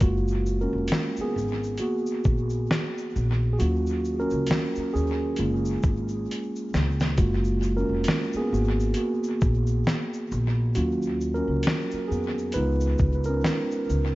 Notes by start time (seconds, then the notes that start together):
0.01 F#1 G#3 A#3 F4 F#4, kick, closed hi-hat, shaker
0.28 shaker
0.46 shaker
0.61 C#4 A#4
0.73 F1
0.88 closed hi-hat, shaker
0.92 snare
1.17 muted upright bass stroke, shaker
1.21 B3 G#4
1.36 G#1, shaker
1.63 shaker
1.78 A#3 B3 F#4, closed hi-hat, shaker
1.82 F#4
2.06 shaker
2.24 A#1, kick, shaker
2.50 shaker
2.71 snare, closed hi-hat, shaker
2.98 shaker
3.16 A#1, shaker
3.53 G#4
3.59 D#2 F#3 A#3 C#4 F4 F#4, closed hi-hat, shaker
3.86 shaker
4.05 shaker
4.20 C#4 A#4
4.30 C#2, shaker
4.47 closed hi-hat, shaker
4.51 snare
4.75 muted upright bass stroke, shaker
4.94 D#2 C#4 G#4, shaker
5.36 F#1 G#3 A#3 F4, closed hi-hat, shaker
5.65 shaker
5.83 G#1, kick, shaker
6.09 shaker
6.31 closed hi-hat, shaker
6.56 shaker
6.74 C#2, snare, shaker
7.00 snare, shaker
7.18 F#1 G#3 A#3 F4 F#4, kick, closed hi-hat, shaker
7.44 shaker
7.63 shaker
7.77 C#4 A#4
7.89 F1
8.04 closed hi-hat, shaker
8.08 snare
8.33 G#4, muted upright bass stroke, shaker
8.39 B3
8.52 G#1 A#3 B3 F#4, shaker
8.80 shaker
8.94 F#4, closed hi-hat, shaker
8.99 A#3
9.23 shaker
9.41 A#1, kick, shaker
9.67 shaker
9.87 snare, closed hi-hat, shaker
10.14 shaker
10.31 A#1, shaker
10.75 D#2 F#3 A#3 C#4 F4 F#4, closed hi-hat, shaker
11.02 shaker
11.21 shaker
11.34 C#4 A#4
11.48 C#2
11.63 closed hi-hat, shaker
11.67 snare
11.91 muted upright bass stroke, shaker
12.08 F2 B3 G#4, shaker
12.38 shaker
12.52 C#2 G#3 B4, closed hi-hat, shaker
12.56 B3 D#4 F4
12.80 shaker
12.98 C#2, kick, shaker
13.24 A#4, shaker
13.29 C#4
13.44 snare, closed hi-hat, shaker
13.71 shaker
13.89 C#2, shaker